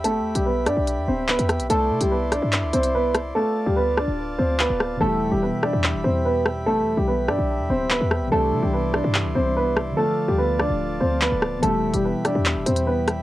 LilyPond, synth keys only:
\new Staff \with { instrumentName = "Synth keys" } { \clef bass \time 4/4 \key e \phrygian \tempo 4 = 145 r1 | r1 | r1 | <b, e g e' g'>1~ |
<b, e g e' g'>1 | <c e g d' g'>1 | <d f a f' a'>1 | <b, e g e' g'>1 | }